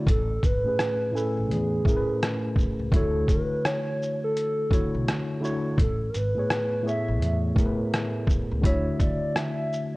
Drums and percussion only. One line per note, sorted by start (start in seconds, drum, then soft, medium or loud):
0.07 kick loud
0.07 closed hi-hat medium
0.43 kick medium
0.43 closed hi-hat soft
0.43 shaker soft
0.79 cross-stick loud
0.79 closed hi-hat medium
1.17 shaker soft
1.51 closed hi-hat medium
1.85 kick loud
1.85 shaker soft
2.23 cross-stick loud
2.23 closed hi-hat medium
2.56 kick loud
2.56 shaker soft
2.92 kick loud
2.92 closed hi-hat medium
3.28 kick medium
3.28 closed hi-hat soft
3.28 shaker soft
3.65 cross-stick loud
3.65 closed hi-hat medium
4.02 shaker soft
4.36 closed hi-hat medium
4.70 kick medium
4.70 closed hi-hat soft
4.70 shaker soft
5.08 cross-stick loud
5.08 closed hi-hat medium
5.44 shaker soft
5.78 kick loud
5.78 closed hi-hat medium
6.14 closed hi-hat soft
6.14 shaker soft
6.50 cross-stick loud
6.50 closed hi-hat medium
6.88 shaker soft
7.22 closed hi-hat medium
7.56 kick medium
7.56 closed hi-hat soft
7.56 shaker soft
7.94 cross-stick loud
7.94 closed hi-hat medium
8.27 kick loud
8.27 shaker soft
8.63 kick loud
8.63 closed hi-hat medium
8.99 kick medium
8.99 closed hi-hat soft
8.99 shaker soft
9.36 cross-stick loud
9.36 closed hi-hat medium
9.73 shaker soft